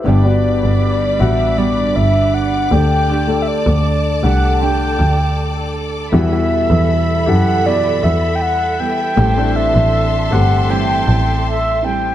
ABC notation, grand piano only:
X:1
M:4/4
L:1/16
Q:1/4=79
K:G
V:1 name="Grand piano"
[B,DGBe] [B,DF]4- [B,DF] [B,DF]8 [A,DG]2- | [A,DG] [A,DA]4- [A,DA] [A,DG]8 z2 | [G,EF] [G,EF]4- [G,EF] [EGA]8 z2 | [A,CG] [A,CD]4- [A,CD] [A,CG]8 z2 |]
V:2 name="Grand piano" clef=bass
G,,6 z8 D,2- | D,4 z12 | E,6 z8 z2 | A,,6 z8 z2 |]